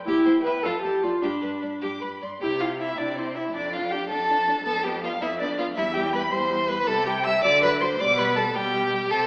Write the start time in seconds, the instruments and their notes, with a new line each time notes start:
Already playing: violin G5
0.06 cello E2, viola E4, violin G4
0.26 cello E2, violin C5
0.44 cello E2, viola B4, violin E5
0.63 cello F2, violin F4 A5, viola A4
0.83 cello F2, viola G4, violin A4
1.03 cello F2, viola F4, violin D5
1.22 cello G2, viola D4, violin G4 B5
1.42 cello G2, violin B4
1.62 cello G2, violin D5
1.82 cello G2, violin G4 D6
2.01 cello G2, violin B4 B5
2.21 cello G2, violin D5 C6
2.41 cello C3, viola E4, violin G4 G5
2.60 viola E4, violin F4 F5
2.79 violin E4 E5, viola E4
2.98 cello C3, violin D4 D5, viola E4
3.17 violin C4 C5, viola E4
3.35 violin E4 E5, viola E4
3.53 cello F2, violin D4 D5, viola D4
3.72 viola D4, violin F4 F5
3.91 viola D4, violin G4 G5
4.09 cello F2, viola D4, violin A4 A5
4.30 viola D4
4.47 viola D4
4.65 cello F2, viola B3, violin A4 A5
4.83 viola B3, violin G4 G5
5.02 viola B3, violin F4 F5
5.21 cello F2, viola B3, violin E4 E5
5.40 viola B3, violin D4 D5
5.58 viola B3, violin F4 F5
5.75 cello E2, viola G3, violin E4 E5
5.94 viola G3, violin G4 G5
6.13 viola G3, violin B4 B5
6.31 cello E2, viola G3, violin C5 C6
6.49 viola G3
6.68 viola G3, violin B4 B5
6.87 cello C3, viola G3, violin A4 A5
7.06 viola G3, violin G4 G5
7.24 viola G3, violin E5 E6
7.44 cello D3, viola F#3, violin D5 D6
7.63 viola F#3, violin B4 B5
7.80 viola F#3, violin C5 C6
7.98 cello B2, viola G3, violin D5 D6
8.17 viola G3, violin B4 B5
8.36 viola G3, violin A4 A5
8.53 cello B2, viola G3, violin G4 G5
8.73 viola G3
8.92 viola G3
9.10 cello C3, viola C4, violin A4 A5